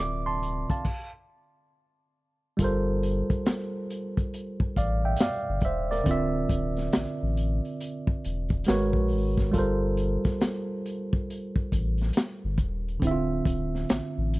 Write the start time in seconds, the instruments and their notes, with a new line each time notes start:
Already playing: sub bass D1, tine electric piano D3 C4 F4 A#4 D5 E5
0.00 tine electric piano D6
0.26 tine electric piano A5 C6
0.43 closed hi-hat
0.70 tine electric piano F5 A5, kick, closed hi-hat
0.85 kick, crash
2.57 sub bass G1, tine electric piano G3 F4, kick, closed hi-hat
2.61 tine electric piano A4 A#4 C5
3.03 closed hi-hat
3.30 kick, closed hi-hat
3.46 snare, closed hi-hat
3.90 closed hi-hat
4.17 kick, closed hi-hat
4.34 closed hi-hat
4.60 kick
4.76 sub bass A1, tine electric piano D5 F5, kick, closed hi-hat
5.05 tine electric piano E5 G5
5.16 closed hi-hat
5.20 tine electric piano D5 F5, snare
5.49 sub bass G1
5.61 sub bass D#1, kick, closed hi-hat
5.65 tine electric piano C5 E5
5.91 tine electric piano A#4 D5, snare, closed hi-hat
6.04 sub bass D1, tine electric piano D3 C4, kick, closed hi-hat
6.09 tine electric piano F4 E5
6.49 sub bass D1, kick, closed hi-hat
6.76 snare, closed hi-hat
6.93 sub bass A1, snare, closed hi-hat
7.22 sub bass A1
7.37 closed hi-hat
7.65 closed hi-hat
7.81 closed hi-hat
8.07 kick
8.25 sub bass E1, closed hi-hat
8.49 kick, closed hi-hat
8.64 tine electric piano G#3 F#4, closed hi-hat
8.68 sub bass G#1, tine electric piano A#4 B4 C#5, snare
8.93 sub bass A#1, kick
9.08 sub bass G#1, open hi-hat
9.38 kick, snare, closed hi-hat
9.51 sub bass G1, tine electric piano G3 F4 A4, kick, closed hi-hat
9.57 tine electric piano A#4 C5
9.97 closed hi-hat
10.24 kick, snare, closed hi-hat
10.41 snare, closed hi-hat
10.86 closed hi-hat
11.13 kick
11.30 closed hi-hat
11.56 kick
11.72 sub bass A1, kick, closed hi-hat
11.98 snare, closed hi-hat
12.13 closed hi-hat
12.17 snare
12.44 sub bass G1
12.58 sub bass D#1, kick, closed hi-hat
12.88 closed hi-hat
13.00 sub bass D1, tine electric piano D3 C4, kick, closed hi-hat
13.05 tine electric piano E4 E5
13.11 tine electric piano F4
13.45 sub bass D1, kick, closed hi-hat
13.75 snare
13.89 sub bass A1, snare, closed hi-hat
14.18 sub bass A1
14.34 closed hi-hat